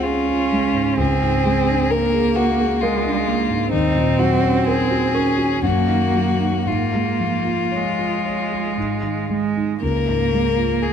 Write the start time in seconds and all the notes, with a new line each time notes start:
Already playing: C#2 G#2 G#3 F4 G#4
0.03 C#4 F4 G#4
0.28 F4
0.52 G#3
0.74 G#2
0.97 C#2 C4 G#4
1.21 G#2
1.45 G#3
1.68 D4
1.91 A#3 A#4
2.14 G#4
2.36 F#4 A#4
2.61 G#4
2.81 G#3 F4 A#4
3.04 D4
3.27 G#3 A#3
3.49 G#2
3.71 D#2 C4 D#4
3.96 A#2
4.19 F#3 F#4
4.42 C#4
4.67 G#4 A#4
4.91 F#4
5.14 C#4 A#4
5.38 F#4
5.62 F#2 F#4
5.66 A#3
5.88 D#3
6.15 F#3
6.40 D#4
6.66 G#2 A#3 F4
6.94 G#3
7.19 F3
7.45 F4
7.72 G#3 C#5
7.99 F4
8.26 C#5
8.52 F4
8.77 G#2
9.03 D#3
9.29 G#3
9.56 D#4
9.82 C#2 A#3 A#4
10.08 G#2
10.33 G#3
10.57 F4
10.82 G#4